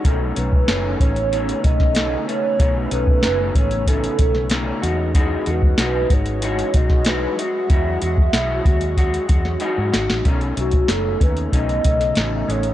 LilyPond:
<<
  \new Staff \with { instrumentName = "Soft synth lead" } { \time 4/4 \key b \mixolydian \tempo 4 = 94 a'8 b'4 cis''4 dis''4 cis''8~ | cis''8 b'8 b'8 cis''8 a'4. r8 | gis'8 b'4 cis''4 dis''8 b'8 e''8~ | e''2. r4 |
r8 fis'8 a'8 b'8 dis''4. cis''8 | }
  \new Staff \with { instrumentName = "Ambient pad" } { \time 4/4 \key b \mixolydian <cis a b cis'>1~ | <cis a b cis'>2.~ <cis a b cis'>8 <fis gis fis'>8~ | <fis gis fis'>1~ | <fis gis fis'>1 |
<cis a b dis''>1 | }
  \new Staff \with { instrumentName = "Clean electric guitar" } { \time 4/4 \key b \mixolydian <b, dis a cis'>8 <dis a cis'>8 <b, dis a cis'>8 <dis a cis'>8 <b, dis a cis'>8 <dis a cis'>8 <b, dis a cis'>8 <dis a cis'>8 | <b, dis a cis'>8 <dis a cis'>8 <b, dis a cis'>8 <dis a cis'>8 <b, dis a cis'>8 <dis a cis'>8 <b, dis a cis'>8 <gis dis' fis'>8 | <e gis dis' fis'>8 <gis dis' fis'>8 <e gis dis' fis'>8 <gis dis' fis'>8 <e gis dis' fis'>8 <gis dis' fis'>8 <e gis dis' fis'>8 <gis fis'>8 | <e gis fis'>8 <gis fis'>8 <e gis fis'>8 <gis fis'>8 <gis fis'>8 <gis fis'>8 <e gis dis' fis'>8 <gis dis' fis'>8 |
<b, dis a cis'>8 <dis a cis'>8 <b, dis a cis'>8 <dis a cis'>8 <b, dis a cis'>8 <dis a cis'>8 <b, dis a cis'>8 <dis a cis'>8 | }
  \new Staff \with { instrumentName = "Fingered electric bass" } { \clef bass \time 4/4 \key b \mixolydian b,,8 b,,8 fis,,8 a,,4 b,,4 r8 | b,,8 b,,8 fis,,8 a,,4 b,,4 e,8~ | e,8 e,8 b,,8 gis,,4 b,,4 r8 | e,8 e,8 b,,8 dis,4 e,8 r16 gis,16 gis,,16 a,,16 |
b,,8 b,,8 fis,,8 dis,8 b,,8 b,,8 a,,8 a,,8 | }
  \new DrumStaff \with { instrumentName = "Drums" } \drummode { \time 4/4 <hh bd>8 hh16 bd16 <hh sn>8 <hh bd>16 hh16 hh16 hh16 <hh bd>16 <bd sn>16 <hh sn>8 hh8 | <hh bd>8 hh16 bd16 <hh sn>8 <hh bd>16 hh16 <hh bd>16 hh16 <hh bd>16 sn16 <hh sn>8 hh8 | <hh bd>8 hh16 bd16 <hh sn>8 <hh bd>16 hh16 hh16 hh16 <hh bd>16 <bd sn>16 <hh sn>8 hh8 | <hh bd>8 hh16 bd16 <hh sn>8 <hh bd>16 hh16 <hh bd>16 hh16 <hh bd>16 sn16 hh8 <hh sn>16 sn16 |
<hh bd>16 hh16 hh16 <hh bd>16 <hh sn>8 <hh bd>16 hh16 <hh bd>16 hh16 <hh bd>16 <hh sn>16 <hh sn>8 hh16 hh16 | }
>>